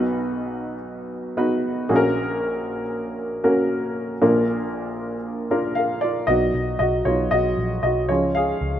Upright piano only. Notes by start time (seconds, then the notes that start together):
Already playing: B1 B2 B3 D#4 F#4 B4
1.37 B3 D#4 F#4 B4
1.89 A#1 A#2 A#3 C#4 F#4 G#4
1.96 A#4
3.44 A#3 C#4 F#4 A#4
4.21 A#1 A#2 A#3 D4 F4 A#4
5.51 A#3 D4 F4 A#4
5.75 A#4 F5
6.01 F4 D5
6.27 F#3 B3 D#4 F#4 D#5
6.79 F#4 D#5
7.05 F#3 B3 D#4 F4 C#5
7.31 F#4 D#5
7.83 F#4 D#5
8.09 F3 G#3 C#4 F4 C#5
8.35 G#4 F5